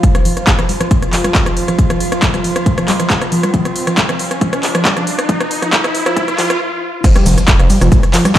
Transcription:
0.00 6.60 F3 medium
0.00 0.13 F3 medium
0.00 6.60 F4 medium
0.00 6.60 C5 medium
0.00 6.60 F5 medium
0.00 kick loud
0.00 closed hi-hat medium
0.00 riser medium
0.15 0.24 G3 medium
0.15 cross-stick medium
0.15 closed hi-hat medium
0.25 0.32 F3 medium
0.25 open hi-hat loud
0.37 cross-stick medium
0.37 closed hi-hat medium
0.47 kick loud
0.47 clap loud
0.47 closed hi-hat medium
0.59 0.68 F3 medium
0.59 cross-stick medium
0.59 closed hi-hat medium
0.69 0.79 G3 medium
0.69 open hi-hat medium
0.81 0.87 F3 medium
0.81 cross-stick medium
0.81 closed hi-hat medium
0.91 kick loud
0.91 closed hi-hat medium
1.02 cross-stick medium
1.02 closed hi-hat medium
1.13 1.23 F3 medium
1.13 clap medium
1.13 open hi-hat loud
1.24 1.33 G3 medium
1.24 cross-stick medium
1.24 closed hi-hat medium
1.35 1.41 F3 medium
1.35 kick loud
1.35 clap loud
1.35 closed hi-hat medium
1.46 cross-stick medium
1.46 closed hi-hat medium
1.57 open hi-hat medium
1.68 1.77 F3 medium
1.68 cross-stick medium
1.68 closed hi-hat medium
1.79 1.89 G3 medium
1.79 kick loud
1.79 closed hi-hat medium
1.90 1.96 F3 medium
1.90 cross-stick medium
1.90 closed hi-hat medium
2.00 open hi-hat loud
2.12 cross-stick medium
2.12 closed hi-hat medium
2.22 2.32 F3 medium
2.22 kick loud
2.22 clap loud
2.22 closed hi-hat medium
2.34 2.43 G3 medium
2.34 cross-stick medium
2.34 closed hi-hat medium
2.44 2.51 F3 medium
2.44 open hi-hat loud
2.56 cross-stick medium
2.56 closed hi-hat medium
2.66 kick loud
2.66 closed hi-hat medium
2.78 2.87 F3 medium
2.78 cross-stick medium
2.78 closed hi-hat medium
2.88 2.98 G3 medium
2.88 clap medium
2.88 open hi-hat loud
3.00 3.06 F3 medium
3.00 cross-stick medium
3.00 closed hi-hat medium
3.10 kick loud
3.10 clap loud
3.10 closed hi-hat medium
3.21 cross-stick medium
3.21 closed hi-hat medium
3.32 3.42 F3 medium
3.32 open hi-hat medium
3.43 3.52 G3 medium
3.43 cross-stick medium
3.43 closed hi-hat medium
3.54 3.60 F3 medium
3.54 kick loud
3.54 closed hi-hat medium
3.65 cross-stick medium
3.65 closed hi-hat medium
3.76 open hi-hat loud
3.87 3.96 F3 medium
3.87 cross-stick medium
3.87 closed hi-hat medium
3.98 4.08 G3 medium
3.98 kick loud
3.98 clap loud
3.98 closed hi-hat medium
4.09 4.15 F3 medium
4.09 cross-stick loud
4.09 closed hi-hat medium
4.19 open hi-hat loud
4.31 cross-stick medium
4.31 closed hi-hat medium
4.41 4.48 F3 medium
4.41 kick loud
4.41 closed hi-hat medium
4.53 cross-stick loud
4.53 closed hi-hat medium
4.63 clap medium
4.63 open hi-hat loud
4.75 4.84 F3 medium
4.75 cross-stick loud
4.75 closed hi-hat medium
4.85 4.95 G3 medium
4.85 kick loud
4.85 clap loud
4.85 closed hi-hat medium
4.97 5.03 F3 medium
4.97 cross-stick medium
4.97 closed hi-hat medium
5.07 open hi-hat loud
5.19 cross-stick loud
5.19 closed hi-hat medium
5.29 5.36 F3 medium
5.29 kick loud
5.29 closed hi-hat medium
5.40 cross-stick loud
5.40 closed hi-hat medium
5.51 open hi-hat loud
5.62 5.71 F3 medium
5.62 cross-stick medium
5.62 closed hi-hat medium
5.73 5.79 F3 medium
5.73 kick loud
5.73 clap loud
5.73 closed hi-hat medium
5.84 cross-stick loud
5.84 closed hi-hat medium
5.95 open hi-hat loud
6.06 6.15 F3 medium
6.06 cross-stick loud
6.06 closed hi-hat medium
6.17 6.23 F3 medium
6.17 kick loud
6.17 closed hi-hat medium
6.28 cross-stick medium
6.28 closed hi-hat medium
6.38 6.45 F3 medium
6.38 clap medium
6.38 open hi-hat loud
6.50 cross-stick loud
6.50 closed hi-hat medium
7.04 7.14 F3 medium
7.04 kick loud
7.04 closed hi-hat medium
7.04 crash loud
7.04 ride medium
7.04 impact medium
7.04 shaker soft
7.16 7.25 G3 medium
7.16 cross-stick medium
7.16 closed hi-hat medium
7.26 7.35 F1 loud
7.26 7.33 F3 medium
7.26 open hi-hat loud
7.26 ride medium
7.26 shaker medium
7.38 cross-stick medium
7.38 closed hi-hat medium
7.38 shaker soft
7.48 kick loud
7.48 clap loud
7.48 closed hi-hat medium
7.48 ride medium
7.48 shaker soft
7.59 7.68 F1 loud
7.59 7.68 F3 medium
7.59 cross-stick medium
7.59 closed hi-hat medium
7.70 7.80 G3 medium
7.70 open hi-hat loud
7.70 ride medium
7.70 shaker medium
7.81 7.90 F1 medium
7.81 7.87 F3 medium
7.81 cross-stick medium
7.81 closed hi-hat medium
7.81 shaker soft
7.92 8.01 F1 medium
7.92 kick loud
7.92 closed hi-hat medium
7.92 ride medium
7.92 shaker soft
8.03 cross-stick medium
8.03 closed hi-hat medium
8.14 8.24 F3 medium
8.14 clap medium
8.14 open hi-hat loud
8.14 ride medium
8.14 shaker medium
8.25 8.34 G3 medium
8.25 cross-stick medium
8.25 closed hi-hat medium
8.25 shaker soft

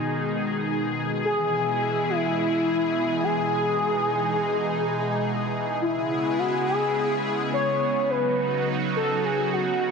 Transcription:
0.00 5.78 B2 medium
0.00 1.22 D#3 medium
0.00 1.21 G#3 medium
0.00 1.22 D#4 medium
0.00 5.78 G#4 medium
1.24 5.78 E3 medium
1.24 5.78 G#3 medium
1.24 3.51 E4 medium
1.24 2.11 G#4 loud
2.10 3.25 E4 loud
3.24 5.24 G#4 loud
3.53 5.79 D#4 medium
5.81 9.91 C#3 medium
5.81 8.08 G#3 medium
5.81 9.91 B3 medium
5.81 8.08 E4 medium
5.81 6.40 E4 medium
5.81 8.08 G#4 medium
6.39 6.66 F#4 loud
6.67 7.20 G#4 loud
7.53 8.12 C#5 loud
8.10 9.91 F#3 medium
8.10 9.91 D#4 medium
8.10 9.91 F#4 medium
8.10 8.67 B4 loud
8.96 9.26 A4 loud
9.24 9.54 G#4 loud
9.53 9.91 F#4 loud

